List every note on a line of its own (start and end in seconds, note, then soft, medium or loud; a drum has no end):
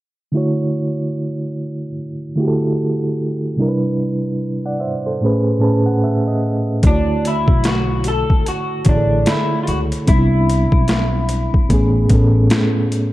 0.32 1.84 D3 medium
0.32 1.85 A3 medium
0.32 1.86 E4 medium
0.32 1.86 F#4 medium
0.37 1.87 C#5 medium
2.35 3.50 D3 medium
2.35 3.51 A3 medium
2.35 3.51 E4 medium
2.35 3.52 F#4 medium
2.41 2.47 G4 medium
2.47 3.56 A4 medium
3.56 5.09 C3 medium
3.56 5.10 G3 medium
3.56 5.10 D4 medium
3.56 5.11 E4 medium
3.62 3.68 A#4 medium
3.68 4.45 B4 medium
4.66 4.81 D5 medium
4.66 4.80 F#5 medium
4.80 5.05 C5 medium
4.80 5.04 E5 medium
5.06 5.45 A4 medium
5.06 5.44 C5 medium
5.21 5.58 A2 medium
5.21 5.59 A3 medium
5.21 5.60 C#4 medium
5.21 5.61 G#4 medium
5.26 5.61 B4 medium
5.59 6.74 A2 medium
5.59 6.74 A3 medium
5.59 6.75 C#4 medium
5.59 6.75 G#4 medium
5.59 5.85 A5 medium
5.63 6.76 B4 medium
5.86 6.01 F#5 medium
6.03 6.26 E5 medium
6.28 6.80 D#5 medium
6.82 7.42 D2 loud
6.82 8.34 D3 medium
6.82 8.35 A3 medium
6.82 8.36 E4 medium
6.82 8.35 C#5 medium
6.82 kick loud
6.82 closed hi-hat medium
6.87 7.27 D4 medium
6.87 8.36 F#4 medium
7.25 7.64 E4 medium
7.25 closed hi-hat medium
7.48 8.21 B1 medium
7.48 kick loud
7.64 8.08 F#4 medium
7.64 snare medium
7.64 closed hi-hat medium
8.04 closed hi-hat medium
8.08 8.48 A4 medium
8.30 kick medium
8.46 8.89 F#4 medium
8.46 closed hi-hat medium
8.85 9.23 A1 medium
8.85 9.99 D3 medium
8.85 10.00 A3 medium
8.85 10.00 C#5 medium
8.85 kick medium
8.85 closed hi-hat medium
8.89 9.29 D4 medium
8.89 10.01 E4 medium
8.89 8.96 G#4 medium
8.97 10.05 A4 medium
9.26 9.63 E4 medium
9.26 snare loud
9.26 closed hi-hat medium
9.63 9.68 F4 medium
9.67 9.90 C#2 medium
9.67 9.79 F#4 medium
9.67 closed hi-hat medium
9.92 closed hi-hat soft
10.07 10.67 C2 loud
10.07 11.59 G3 medium
10.07 11.60 B3 medium
10.07 11.58 C4 medium
10.07 12.47 E4 medium
10.07 kick loud
10.07 closed hi-hat medium
10.11 11.60 D4 medium
10.11 10.18 D#4 medium
10.19 11.64 E4 medium
10.49 closed hi-hat medium
10.72 11.46 B1 medium
10.72 kick medium
10.88 snare medium
10.88 closed hi-hat medium
11.29 closed hi-hat medium
11.54 kick medium
11.69 12.07 A1 medium
11.69 12.07 A2 medium
11.69 12.08 A3 medium
11.69 12.08 B3 medium
11.69 12.09 C#4 medium
11.69 kick medium
11.69 closed hi-hat medium
11.74 12.10 G#4 loud
12.09 12.47 A1 medium
12.09 13.13 A2 medium
12.09 13.13 A3 medium
12.09 13.13 B3 medium
12.09 13.13 C#4 medium
12.09 kick loud
12.09 closed hi-hat medium
12.14 13.13 A4 medium
12.50 snare loud
12.50 closed hi-hat medium
12.92 closed hi-hat medium